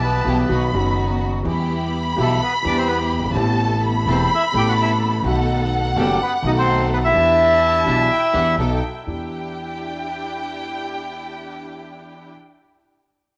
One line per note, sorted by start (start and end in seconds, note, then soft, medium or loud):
0.00 0.21 B1 loud
0.00 0.21 B1 medium
0.00 0.22 B2 medium
0.00 0.21 E3 medium
0.00 0.21 G3 medium
0.00 0.21 B3 medium
0.00 0.22 B3 medium
0.00 0.21 E4 medium
0.00 0.21 G4 medium
0.00 0.23 G4 medium
0.00 0.70 B4 medium
0.00 0.48 A5 loud
0.05 0.71 B3 medium
0.24 0.45 B1 medium
0.24 0.45 B2 medium
0.24 0.45 E3 medium
0.24 0.45 G3 medium
0.24 0.45 B3 medium
0.24 0.45 E4 medium
0.24 0.45 G4 medium
0.24 0.46 G4 medium
0.49 0.69 B1 medium
0.49 0.69 B2 medium
0.49 0.69 D#3 medium
0.49 0.69 F#3 medium
0.49 0.69 B3 medium
0.49 0.70 D#4 medium
0.49 0.69 F#4 medium
0.49 0.70 F#4 medium
0.49 1.22 B5 medium
0.72 1.42 F#1 medium
0.72 1.42 F#2 medium
0.72 1.41 D#3 medium
0.72 1.42 F#3 medium
0.72 1.42 B3 medium
0.72 1.42 D#4 medium
0.72 1.42 F#4 medium
0.72 1.43 F#4 medium
1.43 2.13 E2 loud
1.43 2.14 E2 medium
1.43 2.13 E3 medium
1.43 2.13 G3 medium
1.43 2.14 B3 medium
1.43 2.14 E4 medium
1.43 2.14 G4 medium
1.43 3.33 B5 loud
2.16 2.37 B1 medium
2.16 2.37 B1 loud
2.16 2.37 B2 medium
2.16 2.37 E3 medium
2.16 2.37 G3 medium
2.16 2.41 A3 medium
2.16 2.37 B3 medium
2.16 2.38 E4 medium
2.16 2.37 G4 medium
2.16 2.38 G4 medium
2.22 2.42 A4 medium
2.43 2.53 B3 medium
2.43 2.54 B4 loud
2.63 3.32 E2 medium
2.63 3.18 E2 medium
2.63 2.64 E3 medium
2.63 3.32 E3 medium
2.63 3.32 G3 medium
2.63 3.32 B3 medium
2.63 3.33 B3 medium
2.63 3.32 E4 medium
2.63 3.32 G4 medium
2.67 2.77 D4 medium
2.67 3.33 G4 medium
2.67 2.77 D5 loud
2.77 2.88 C4 medium
2.77 2.88 C5 medium
2.88 2.99 B3 medium
2.88 2.99 B4 medium
3.19 3.24 F#1 soft
3.19 3.24 F#1 medium
3.24 3.30 G1 medium
3.24 3.29 G1 medium
3.30 3.35 G#1 medium
3.30 3.36 G#1 medium
3.35 4.03 A1 loud
3.35 4.04 A1 medium
3.35 4.04 A2 medium
3.35 4.03 C3 medium
3.35 4.03 A3 medium
3.35 4.03 B3 medium
3.35 4.04 B3 medium
3.35 4.04 A4 medium
3.35 3.83 A5 loud
3.39 4.05 E4 medium
3.83 5.25 B5 loud
4.06 4.26 E1 medium
4.06 4.27 E1 medium
4.06 4.27 E2 medium
4.06 4.27 C3 medium
4.06 4.27 A3 medium
4.06 4.27 B3 medium
4.06 4.27 C4 medium
4.06 4.27 E4 medium
4.06 4.27 A4 medium
4.10 4.30 C4 medium
4.10 4.31 C5 medium
4.34 4.44 E4 medium
4.34 4.45 E5 loud
4.52 5.21 A1 loud
4.52 5.22 A1 medium
4.52 5.21 A2 medium
4.52 5.20 C3 medium
4.52 5.21 A3 medium
4.52 5.21 B3 medium
4.52 5.22 B3 medium
4.52 5.21 A4 loud
4.56 5.23 E4 medium
4.56 4.67 G4 medium
4.56 4.67 G5 loud
4.69 4.74 F#4 medium
4.69 4.73 F#5 medium
4.82 4.92 E4 medium
4.82 4.91 E5 medium
5.23 5.92 B1 loud
5.23 5.92 B1 medium
5.23 5.92 B2 medium
5.23 5.91 D#3 medium
5.23 5.92 A3 medium
5.23 5.92 B3 medium
5.23 5.93 B3 medium
5.23 5.92 D#4 medium
5.23 5.92 A4 medium
5.27 5.93 F#4 medium
5.27 7.11 F#5 loud
5.96 6.16 F#1 loud
5.96 6.16 F#1 medium
5.96 6.16 F#2 loud
5.96 6.16 D#3 medium
5.96 6.19 G3 medium
5.96 6.16 A3 medium
5.96 6.16 B3 medium
5.96 6.16 D#4 medium
5.96 6.16 F#4 medium
5.96 6.19 G4 medium
5.96 6.16 A4 medium
6.23 6.34 B3 medium
6.23 6.33 B4 loud
6.42 7.11 B1 loud
6.42 7.11 B1 medium
6.42 7.11 B2 medium
6.42 7.10 D#3 medium
6.42 7.11 A3 medium
6.42 7.11 D#4 medium
6.42 7.12 D#4 medium
6.42 7.11 A4 medium
6.46 6.52 D#4 medium
6.46 7.12 F#4 medium
6.46 6.51 D#5 loud
6.58 6.90 C4 medium
6.58 6.90 C5 loud
6.93 6.99 B3 medium
6.93 6.98 B4 medium
7.05 8.56 E4 medium
7.05 8.55 E5 loud
7.13 7.82 E2 medium
7.13 7.82 E2 loud
7.13 7.82 E3 medium
7.13 7.82 B3 medium
7.13 7.82 D4 medium
7.13 7.83 E4 medium
7.13 7.83 G4 medium
7.13 8.06 A5 loud
7.85 8.06 B1 medium
7.85 8.06 B1 loud
7.85 8.06 B2 medium
7.85 8.05 E3 medium
7.85 8.06 B3 medium
7.85 8.06 D4 medium
7.85 8.06 E4 medium
7.85 8.06 G4 medium
8.11 8.35 G5 medium
8.33 8.54 E2 medium
8.33 8.54 E2 loud
8.33 8.55 E3 medium
8.33 8.54 B3 medium
8.33 8.54 D4 medium
8.33 8.54 E4 medium
8.33 8.54 G4 medium
8.33 8.57 F#5 medium
8.57 8.78 B1 loud
8.57 8.79 B1 medium
8.57 8.79 B2 medium
8.57 8.79 F#3 medium
8.57 8.79 B3 medium
8.57 8.78 D#4 medium
8.57 8.79 D#4 medium
8.57 8.79 A4 medium
8.57 9.03 G5 medium
9.06 9.27 E2 medium
9.06 12.31 E2 medium
9.06 12.30 D4 medium
9.06 12.31 D4 soft
9.06 12.30 E4 medium
9.06 12.31 E4 soft
9.06 12.30 G4 medium
9.06 12.31 G4 medium
9.06 12.32 G5 medium